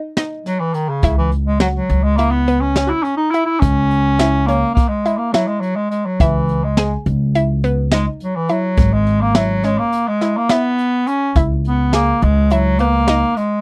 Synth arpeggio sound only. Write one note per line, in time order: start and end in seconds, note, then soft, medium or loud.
0.00 0.12 D#4 medium
0.17 0.64 D#4 medium
1.04 1.50 E4 medium
1.61 2.08 F#4 medium
2.19 2.42 E4 medium
2.48 2.71 B3 medium
2.77 3.23 C#4 medium
3.34 3.80 E4 medium
4.20 4.43 E4 medium
4.48 4.95 C#4 medium
5.06 5.29 E4 medium
5.35 5.81 E4 medium
6.21 6.67 E4 medium
6.78 7.24 G#4 medium
7.35 7.58 E4 medium
7.64 7.87 B3 medium
7.92 8.38 D#4 medium
8.49 8.96 E4 medium
9.36 9.59 E4 medium
9.64 10.11 C#4 medium
10.21 10.45 E4 medium
10.50 10.97 E4 medium
11.36 11.82 E4 loud
11.94 12.40 G#4 medium
12.51 12.74 E4 medium
12.80 13.03 B3 medium
13.09 13.55 D#4 medium